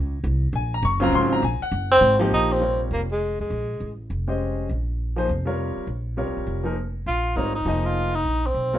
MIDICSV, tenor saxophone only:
0, 0, Header, 1, 2, 480
1, 0, Start_track
1, 0, Tempo, 296589
1, 1829, Time_signature, 4, 2, 24, 8
1, 14218, End_track
2, 0, Start_track
2, 0, Title_t, "Tenor saxophone"
2, 0, Program_c, 0, 66
2, 3102, Note_on_c, 0, 60, 114
2, 3540, Note_off_c, 0, 60, 0
2, 3785, Note_on_c, 0, 63, 94
2, 4091, Note_on_c, 0, 60, 83
2, 4115, Note_off_c, 0, 63, 0
2, 4548, Note_off_c, 0, 60, 0
2, 4744, Note_on_c, 0, 58, 77
2, 4869, Note_off_c, 0, 58, 0
2, 5045, Note_on_c, 0, 56, 83
2, 5473, Note_off_c, 0, 56, 0
2, 5515, Note_on_c, 0, 56, 71
2, 6396, Note_off_c, 0, 56, 0
2, 11449, Note_on_c, 0, 65, 92
2, 11920, Note_on_c, 0, 63, 90
2, 11944, Note_off_c, 0, 65, 0
2, 12212, Note_off_c, 0, 63, 0
2, 12220, Note_on_c, 0, 63, 86
2, 12710, Note_on_c, 0, 65, 100
2, 12735, Note_off_c, 0, 63, 0
2, 13191, Note_on_c, 0, 63, 89
2, 13215, Note_off_c, 0, 65, 0
2, 13698, Note_on_c, 0, 60, 78
2, 13723, Note_off_c, 0, 63, 0
2, 14218, Note_off_c, 0, 60, 0
2, 14218, End_track
0, 0, End_of_file